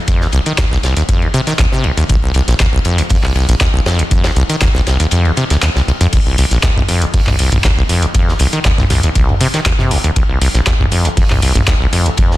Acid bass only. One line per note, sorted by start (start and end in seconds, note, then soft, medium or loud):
0.08 0.23 F2 medium
0.21 0.28 D#2 loud
0.33 0.40 C2 loud
0.46 0.53 D#3 medium
0.58 0.66 D#2 loud
0.71 0.78 C2 loud
0.83 0.94 C2 medium
0.97 1.03 D#2 medium
1.09 1.23 F2 medium
1.22 1.28 D#2 loud
1.34 1.41 C3 loud
1.47 1.54 D#3 medium
1.59 1.66 D#2 loud
1.72 1.86 C3 medium
1.84 1.92 A#1 medium
1.97 2.04 D#2 medium
2.09 2.17 C2 loud
2.23 2.33 C2 medium
2.35 2.42 C2 loud
2.48 2.55 A#1 loud
2.60 2.67 D#2 loud
2.73 2.80 C2 loud
2.85 3.00 F2 medium
2.98 3.02 C2 medium
3.10 3.18 F2 medium
3.23 3.33 C2 medium
3.35 3.46 C2 medium
3.49 3.55 A#1 loud
3.61 3.68 D#2 loud
3.74 3.81 C2 loud
3.86 4.01 F2 medium
3.99 4.03 C2 medium
4.11 4.26 F2 medium
4.24 4.31 D#2 loud
4.36 4.44 C2 loud
4.49 4.56 D#3 medium
4.62 4.69 D#2 loud
4.75 4.81 C2 loud
4.87 4.98 C2 medium
5.00 5.07 D#2 medium
5.12 5.27 F2 medium
5.25 5.32 D#2 loud
5.37 5.45 C3 medium
5.50 5.57 D2 medium
5.62 5.70 D#2 medium
5.76 5.82 C2 medium
5.88 5.92 C2 medium
6.01 6.07 F2 loud
6.13 6.20 C2 loud
6.26 6.36 C2 medium
6.38 6.45 C2 loud
6.51 6.58 A#1 loud
6.63 6.71 D#2 loud
6.76 6.83 C2 loud
6.89 7.03 F2 medium
7.02 7.06 C2 medium
7.14 7.21 F2 medium
7.27 7.37 C2 medium
7.39 7.50 C2 medium
7.52 7.59 A#1 loud
7.64 7.71 D#2 loud
7.77 7.84 C2 loud
7.89 8.04 F2 medium
8.02 8.07 C2 medium
8.15 8.29 F2 medium
8.28 8.34 D#2 loud
8.40 8.47 C2 loud
8.53 8.60 D#3 medium
8.65 8.72 D#2 loud
8.78 8.85 C2 loud
8.90 9.01 C2 medium
9.03 9.10 D#2 medium
9.15 9.30 C2 loud
9.29 9.35 D#2 loud
9.41 9.48 C3 loud
9.54 9.60 D#3 medium
9.66 9.73 D#2 loud
9.79 9.92 C3 medium
9.91 9.98 A#1 medium
10.04 10.11 D#2 medium
10.16 10.23 C2 loud
10.29 10.39 C2 medium
10.41 10.49 C2 loud
10.55 10.61 A#1 loud
10.67 10.74 D#2 loud
10.80 10.86 C2 loud
10.92 11.07 F2 medium
11.05 11.09 C2 medium
11.17 11.24 F2 medium
11.30 11.40 C2 medium
11.42 11.53 C2 medium
11.55 11.62 A#1 loud
11.67 11.75 D#2 loud
11.81 11.87 C2 loud
11.93 12.07 F2 medium
12.06 12.10 C2 medium
12.18 12.33 F2 medium
12.31 12.37 D#2 loud